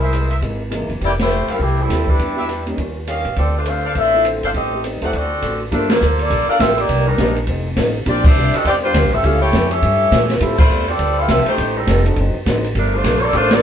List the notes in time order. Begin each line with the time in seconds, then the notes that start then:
Already playing: C2 G#3 D#4 E4 A#4
0.01 G#4 A#4 C5 E5
0.11 C3 G#3 A#3 E4, hi-hat pedal, ride
0.30 G#4 A#4 C5 E5, ride
0.41 G#1 C3 G#3 A#3 E4, kick, ride
0.70 C3 E3 G#3 A#3 D#4 E4, hi-hat pedal, ride
0.89 F#1, ride
1.00 F1 F3 A3 E4 G4, kick, ride
1.05 A#3 E4 G4 D5
1.19 A3 E4 G4 C5, snare, ride
1.29 F3 A3 E4 G4, hi-hat pedal
1.47 F#1 G3 C4 E4 G4 A4 A#4 E5 F5, ride
1.59 C2 E3 F3 A3 C4 E4 G4, kick
1.81 G3 C4 E4 A4
1.88 D#2 F3 G3 A3 C4 E4 G4, snare, hi-hat pedal, ride
2.07 G3 D4 E4 B4, kick
2.18 E2 E3 B3 D4 G4, kick, ride
2.36 G3 B3 D4 F#4 G4 B4 D5 E5
2.48 E3 B3 D4 G4, hi-hat pedal, ride
2.66 G3 A#3 C#4 D#4, ride
2.76 D#2 D#3 G3 C#4 F4, kick, ride
3.07 D#3 G3 C#4 F4 G4 C#5 D#5 F5, hi-hat pedal, ride
3.25 A2, ride
3.36 D2 D3 A3 C4 F4 A4 D5, kick, ride
3.58 A3 D4 F4 C5
3.65 D3 A3 C4 D4 F4 C5 F5, hi-hat pedal, ride
3.69 A4
3.84 A4 C5 D5 F5
3.95 A1 D3 A3 C4 D4 F4 A4 C5 E5, kick, ride
4.14 A3 C4 E4 F4
4.24 D3 A3 C4 F4, hi-hat pedal, ride
4.42 G1 D4 A4 C5 F5, ride
4.54 A1 A2 G3 C4 D#4 G4 A4 D#5, kick, ride
4.73 A3 C4 D#4 G4
4.83 A2 G3 C4 D#4, hi-hat pedal, ride
5.01 D#2 A3 C4 D#4 E4 G4 A4 C5 D5 F#5, ride
5.13 D2 D3 A3 C4 F#4 A4 D5, kick, ride
5.42 A1 D3 A3 C4 F#4, hi-hat pedal, ride
5.71 G1 F3 G3 A3 A#3 D4 F4 A4 A#4, kick, ride
5.89 A#3 F4 A4 C5, snare, ride
6.01 D2 G3 A#3 F4 A4, hi-hat pedal
6.19 A#3 F4 A4 D5, ride
6.30 A#1 G3 A#3 F4 A4, kick, ride
6.48 D4 A4 A#4 F5, muted upright bass stroke
6.59 A1 G3 A#3 C4 F4 A4 E5, kick, snare, hi-hat pedal, ride
6.78 A#3 D#4 G4 D5, ride
6.88 C2 C3 D#3 A#3 D4, kick, ride
7.07 G3 D4 D#4 A#4
7.18 A#1 C3 D#3 A#3 C4 D4 D#4 G4, kick, snare, hi-hat pedal, ride
7.36 ride
7.47 F1 F3 C4 D#4 A4, kick, ride
7.76 A1 F3 C4 D#4 A4, kick, snare, hi-hat pedal, ride
8.06 A#1 A#2 G3 A#3 C4 D4 F4 G4 D5, kick, ride
8.10 D4
8.24 D4 G4 C5 E5, kick, crash
8.36 C2 A#2 G3 C4 D4, hi-hat pedal
8.54 C4 F#4 A4 D#5, muted upright bass stroke, ride
8.65 E2 A#2 G3 C4 F4 G4 D5, kick, ride
8.69 D4
8.84 G3 D4 F4 C5
8.94 D2 A#2 G3 C4 D4, kick, snare, hi-hat pedal, ride
9.05 A#1
9.13 G1 C4 F4 A4 E5
9.23 C#2 A2 G3 A3 C#4 E4 F4 G4 A4 F5, kick, ride
9.41 A3 E4 G4 C#5
9.52 F2 A2 G3 C#4 F4, kick, snare, hi-hat pedal, ride
9.70 C#4 G4 A4 E5, ride
9.82 G2 A2 G3 C#4 F4, kick, ride
10.11 A2 A#2 G3 C#4 F4, kick, snare, hi-hat pedal, ride
10.30 snare, ride
10.40 A2 D3 F3 G3 A3 C4 E4 F4 G4 A4, kick, ride
10.58 A3 E4 F4 C5, kick, crash
10.70 E2 D3 G3 C4 F4, hi-hat pedal
10.88 C4 F4 A4 D5, ride
10.98 D2 D3 G3 C4 F4, kick, ride
11.18 C4 E4 A4 F5
11.28 C2 D3 G3 C4 F4 A4 E5, kick, snare, hi-hat pedal, ride
11.46 A3 D#4 G4 C5, muted upright bass stroke, ride
11.57 A1 A2 G3 C4 D#4, kick, ride
11.77 G3 C4 D#4 A4
11.87 F1 A2 G3 C4 D#4, kick, snare, hi-hat pedal, ride
12.05 C4 D4 D#4 F#4 A4, ride
12.16 F#1 D3 F#3 C4 D#4, kick, ride
12.35 muted upright bass stroke
12.46 A1 D3 F#3 C4 D#4, kick, snare, hi-hat pedal, ride
12.64 ride
12.75 G1 F3 G3 A3 A#3 D4 F4 A4 A#4, kick, ride
12.95 A3 D4 F4 C5
13.03 A#1 G3 A#3 F4 A4, kick, snare, hi-hat pedal, ride
13.20 C#5
13.24 A#3 F4 A4 D5
13.33 A1 G3 A3 A#3 D4 F4 A4 C5, kick, ride
13.50 A#3 D4 F4 G4 A4 D5, snare, ride